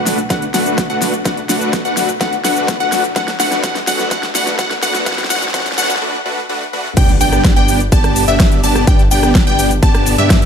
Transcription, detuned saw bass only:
Already playing: B1
0.30 B1
0.54 B1
0.90 B1
1.25 B1
1.49 B1
1.85 B1
2.21 B1
2.45 B1
2.80 B1
3.16 E1
3.40 E1
3.64 E1
3.87 E1
4.11 E1
4.35 E1
4.59 E1
4.83 E1
5.06 E1
5.30 E1
5.54 E1
5.78 E1
6.97 G1
7.21 G1
7.56 G1
7.92 G1
8.28 G1
8.64 G1
8.87 G1
9.11 G1
9.47 G1
9.83 G1
10.18 G2

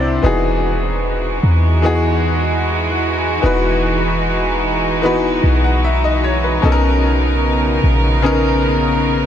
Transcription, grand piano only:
Already playing: C3 C4 D4 E4 C5 D5 E5 F#5 G5
0.22 E3 B3 D#4 F#4 G#4
1.82 E3 B3 D#4 F#4 G#4
3.42 E3 B3 D#4 F#4 B4
5.02 E3 B3 D#4 F#4 B4
5.64 F#5
5.84 E5
6.04 D#5
6.24 C#5
6.44 B4
6.62 B2 B3 C#4 D#4 A4
6.72 A#4
8.22 C#3 B3 C#4 D#4 A#4

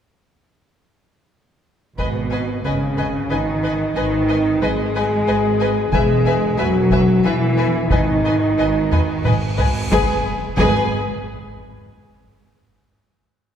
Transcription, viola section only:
1.99 B4
2.32 B4
2.65 B4
2.97 B4
3.30 B4
3.63 B4
3.97 B4
4.29 B4
4.62 B4
4.95 B4
5.29 B4
5.61 B4
5.94 B4
6.27 B4
6.59 B4
6.92 B4
7.25 B4
7.58 B4
7.91 B4
8.26 B4
8.59 B4
8.92 B4
9.24 B4
9.58 B4
9.92 G#4
10.57 G#4

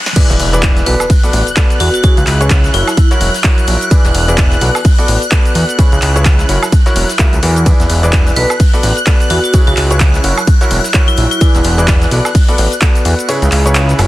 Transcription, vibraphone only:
0.86 B4
1.80 F#4
1.94 F#4
2.04 F#4
2.74 E4
8.36 B4
9.30 F#4
9.44 F#4
9.67 F#4
9.77 F#4
11.08 E4
11.31 E4
11.41 E4

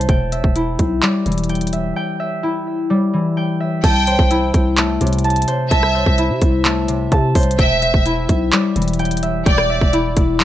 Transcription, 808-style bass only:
0.09 E1
0.44 E1
0.79 B1
1.26 E1
3.84 C2
4.19 C2
4.54 C2
5.01 C2
5.71 C2
6.06 C2
6.30 C3
6.42 C2
7.12 C3
7.35 C2
7.59 E1
7.94 E1
8.29 B1
8.76 E1
9.46 E1
9.81 E1
10.17 E1

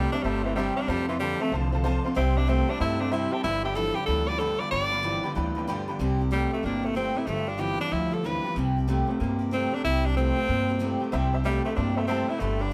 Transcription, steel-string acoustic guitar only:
Already playing: C3 G3 C4 E4 G4
0.12 C4 E4 G4
0.24 G3 C4 E4 G4
0.45 C4 E4 G4
0.57 C3 G3 C4 E4 G4
0.77 C4 E4 G4
0.88 F3 C4 F4 A4
1.09 C4 F4 A4
1.20 F3 C4 F4 A4
1.40 C4 A4
1.52 F3 C4 F4 A4
1.72 C4 F4 A4
1.84 F3 C4 F4 A4
2.04 C4 F4 A4
2.15 C3 G3 C4 E4 G4
2.35 C4 E4 G4
2.47 C3 G3 C4 E4 G4
2.68 C4 E4 G4
2.78 G3 C4 E4 G4
2.99 C4 E4 G4
3.12 C3 G3 C4 E4 G4
3.31 C4 E4 G4
3.44 G2 D3 F3 B3 F4 G4
3.62 F3 B3 F4 G4
3.75 G2 D3 F3 B3 F4 G4
3.95 F3 B3 F4 G4
4.07 F3 B3 F4
4.28 F3 B3 F4 G4
4.39 G2 D3 F3 B3 F4 G4
4.58 F3 B3 F4 G4
4.71 G2 D3 F3 B3 F4 G4
4.90 F3 B3 F4 G4
5.03 G2 D3 F3 B3 F4 G4
5.23 F3 B3 F4 G4
5.35 F3 B3 F4 G4
5.55 F3 B3 F4 G4
5.67 G2 D3 F3 B3 F4 G4
5.88 F3 B3 F4 G4
5.99 C3 G3 C4 E4 G4
6.19 C4 E4 G4
6.31 C3 G3 C4 E4 G4
6.51 C4 E4 G4
6.63 G3 C4 E4 G4
6.83 C4 E4 G4
6.95 C3 G3 C4 E4 G4
7.15 C4 E4 G4
7.27 G2 D3 F3 B3 F4 G4
7.47 F3 B3 F4 G4
7.58 G2 D3 F3 B3 F4 G4
7.77 F3 B3 F4 G4
7.90 F3 B3 F4 G4
8.11 F3 B3 F4 G4
8.24 G2 D3 F3 B3 F4 G4
8.44 F3 B3 F4 G4
8.56 C3 G3 C4 E4 G4
8.77 C4 E4 G4
8.88 C3 G3 C4 E4 G4
9.07 C4 E4 G4
9.20 G3 C4 E4 G4
9.39 C4 E4 G4
9.51 C3 G3 C4 E4 G4
9.72 C4 E4 G4
9.85 C3 G3 C4 E4 G4
10.04 C4 E4 G4
10.17 C3 G3 C4 E4 G4
10.37 C4 E4 G4
10.48 G3 C4 E4 G4
10.69 C4 E4 G4
10.79 C3 G3 C4 E4 G4
11.00 C4 E4 G4
11.12 C3 G3 C4 E4 G4
11.33 C4 E4 G4
11.44 C3 G3 C4 E4 G4
11.65 C4 E4 G4
11.75 G3 C4 E4 G4
11.97 C4 E4 G4
12.08 C3 G3 C4 E4 G4
12.28 C4 E4 G4
12.40 G2 D3 F3 B3 F4 G4
12.59 F3 B3 F4 G4

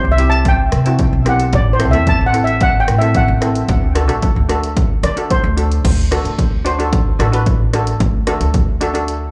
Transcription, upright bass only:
0.05 C2
0.72 C3
1.13 B1
1.53 A1
1.94 E2
2.21 A1
2.87 A2
3.28 A1
3.69 D2
4.09 A1
4.36 D2
5.03 D3
5.43 D2
5.85 D2
6.25 D2
7.19 A1
8.00 D2
8.41 D2

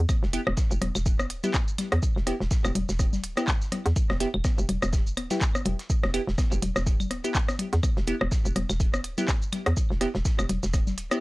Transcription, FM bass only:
0.23 E1
0.47 E1
0.71 E1
0.82 E1
0.95 E1
1.30 D1
1.92 E2
2.16 E1
2.40 E1
2.65 E1
2.75 E1
2.89 E1
3.24 D1
3.86 E2
4.10 E1
4.34 E1
4.58 E1
4.69 E1
4.83 E1
5.17 D1
5.66 E1
6.03 E1
6.27 E1
6.52 E1
6.62 E1
6.76 E1
7.11 D1
7.73 E2
7.97 E1
8.21 E1
8.45 E1
8.56 E1
8.70 E1
9.04 D1
9.66 E2
9.90 E1
10.15 E1
10.39 E1
10.49 E1
10.63 E1
10.98 D1

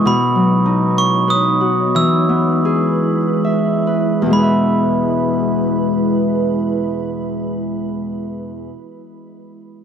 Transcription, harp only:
Already playing: B3
0.05 B2
0.35 F#3
0.65 D#4
1.28 B4
1.61 F#4
1.95 E3
2.29 B3
2.65 G#4
3.44 E5
3.87 B4
4.22 E2
4.26 B2
4.31 G#3
4.35 E4 B4
4.43 E5

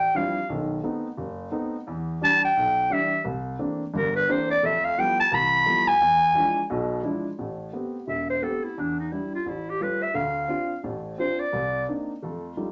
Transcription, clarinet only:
Already playing: G5
0.16 F5
2.24 A5
2.45 G5
2.92 E5
3.97 A#4
4.16 B4
4.31 C5
4.51 D5
4.65 E5
4.85 F5
4.99 G5
5.20 A5
5.34 B5
5.87 G#5
8.08 E5
8.30 C5
8.43 A4
8.64 E4
8.79 D4
9.00 D#4
9.13 E4
9.35 F4
9.48 E4
9.70 G4
9.83 B4
10.02 E5
10.16 F5
11.19 C5
11.40 D5

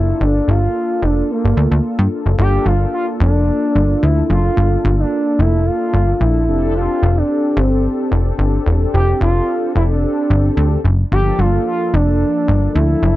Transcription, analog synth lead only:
Already playing: E4
0.22 D4
0.49 F4
1.04 D4
1.31 A#3
2.40 G4
2.66 F4
2.94 F4
3.21 D4
4.03 E4
4.31 F4
4.99 D4
5.40 E4
5.66 F4
6.21 E4
6.76 F4
7.17 D4
7.58 C4
8.94 G4
9.22 F4
9.76 E4
9.91 D4
11.12 G4
11.40 F4
11.66 F4
11.94 D4
12.75 E4

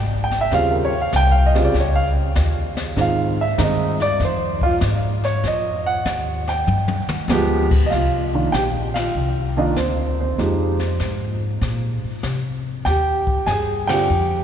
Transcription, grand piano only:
0.24 G5
0.41 E5
0.52 C#3 G3 C4 F4 F5
0.71 A#4
0.85 C#5
1.02 F5
1.16 G5
1.31 F5
1.46 D#5
1.55 C#3 G3 C4 F4
1.65 D5
1.80 C#5
1.96 F5
2.97 D#3 G#3 C4 F4
3.01 F5
3.41 E5
3.58 D#3 G#3 C4 D#4
3.63 D#5
4.02 D5
4.24 C5
4.63 F4
5.25 C#5
5.47 D#5
5.86 F#5
6.49 G5
7.30 F3 G#3 B3 G4
7.86 D#5 F5
7.93 F4
8.34 D#3 A#3 D4 F4
8.52 G4 G5
8.94 F4 F5
9.57 D#3 A#3 D4 D#4 F4 D#5
9.76 C4 C5
10.20 C4 C5
10.38 F3 G#3 D#4 G4
12.85 G4 G5
13.46 G#4 G#5
13.87 D3 G3 C4 F4 G4 G5

